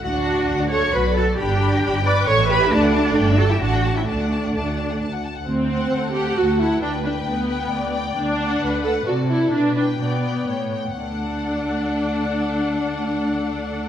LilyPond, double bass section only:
\new Staff \with { instrumentName = "Double bass section" } { \clef bass \time 3/4 \key d \major \tempo 4 = 132 d,4 d,4 b,,4 | g,,4 g,,4 a,,4 | d,4 g,,4 a,,4 | d,4 d,4 d,4 |
r2. | r2. | r2. | r2. |
r2. | r2. | }